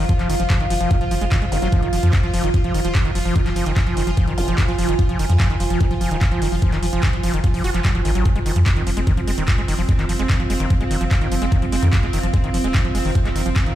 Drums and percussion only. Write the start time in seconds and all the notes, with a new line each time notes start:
0.09 kick, closed hi-hat
0.19 clap, closed hi-hat
0.30 open hi-hat
0.40 closed hi-hat
0.50 kick, clap, closed hi-hat
0.60 closed hi-hat
0.70 open hi-hat
0.81 closed hi-hat
0.91 kick, closed hi-hat
1.01 closed hi-hat
1.11 open hi-hat
1.21 closed hi-hat
1.32 kick, clap, closed hi-hat
1.42 closed hi-hat
1.52 open hi-hat
1.62 closed hi-hat
1.72 kick, closed hi-hat
1.83 closed hi-hat
1.93 open hi-hat
2.03 closed hi-hat
2.13 kick, clap, closed hi-hat
2.23 closed hi-hat
2.34 open hi-hat
2.44 closed hi-hat
2.54 kick, closed hi-hat
2.64 closed hi-hat
2.74 open hi-hat
2.85 closed hi-hat
2.95 kick, clap, closed hi-hat
3.05 closed hi-hat
3.15 open hi-hat
3.25 open hi-hat
3.36 kick, closed hi-hat
3.46 clap, closed hi-hat
3.56 open hi-hat
3.66 closed hi-hat
3.76 kick, clap, closed hi-hat
3.87 closed hi-hat
3.97 open hi-hat
4.07 closed hi-hat
4.17 kick, closed hi-hat
4.28 closed hi-hat
4.38 open hi-hat
4.48 closed hi-hat
4.58 kick, clap, closed hi-hat
4.68 closed hi-hat
4.79 open hi-hat
4.89 closed hi-hat
4.99 kick, closed hi-hat
5.09 closed hi-hat
5.19 open hi-hat
5.30 closed hi-hat
5.40 kick, clap, closed hi-hat
5.50 closed hi-hat
5.60 open hi-hat
5.70 closed hi-hat
5.81 kick, closed hi-hat
5.91 closed hi-hat
6.01 open hi-hat
6.11 closed hi-hat
6.21 kick, clap, closed hi-hat
6.32 closed hi-hat
6.42 open hi-hat
6.52 open hi-hat
6.62 kick, closed hi-hat
6.72 clap, closed hi-hat
6.83 open hi-hat
6.93 closed hi-hat
7.03 kick, clap, closed hi-hat
7.13 closed hi-hat
7.23 open hi-hat
7.34 closed hi-hat
7.44 kick, closed hi-hat
7.54 open hi-hat
7.64 open hi-hat
7.74 clap, closed hi-hat
7.85 kick, clap, closed hi-hat
7.95 closed hi-hat
8.05 open hi-hat
8.15 closed hi-hat
8.25 kick, closed hi-hat
8.36 closed hi-hat
8.46 open hi-hat
8.56 closed hi-hat
8.66 kick, clap, closed hi-hat
8.77 closed hi-hat
8.87 open hi-hat
8.97 closed hi-hat
9.07 kick, closed hi-hat
9.17 closed hi-hat
9.28 open hi-hat
9.38 closed hi-hat
9.48 kick, clap, closed hi-hat
9.58 closed hi-hat
9.68 open hi-hat
9.79 open hi-hat
9.89 kick, closed hi-hat
9.99 clap, closed hi-hat
10.09 open hi-hat
10.19 closed hi-hat
10.30 kick, clap, closed hi-hat
10.40 closed hi-hat
10.50 open hi-hat
10.60 closed hi-hat
10.70 kick, closed hi-hat
10.81 closed hi-hat
10.91 open hi-hat
11.01 closed hi-hat
11.11 kick, clap, closed hi-hat
11.21 closed hi-hat
11.32 open hi-hat
11.42 closed hi-hat
11.52 kick, closed hi-hat
11.62 closed hi-hat
11.72 open hi-hat
11.83 closed hi-hat
11.93 kick, clap, closed hi-hat
12.03 closed hi-hat
12.13 open hi-hat
12.23 closed hi-hat
12.34 kick, closed hi-hat
12.44 closed hi-hat
12.54 open hi-hat
12.64 closed hi-hat
12.74 kick, clap, closed hi-hat
12.85 closed hi-hat
12.95 open hi-hat
13.05 open hi-hat
13.15 kick, closed hi-hat
13.25 clap, closed hi-hat
13.36 open hi-hat
13.46 closed hi-hat
13.56 kick, clap, closed hi-hat
13.66 closed hi-hat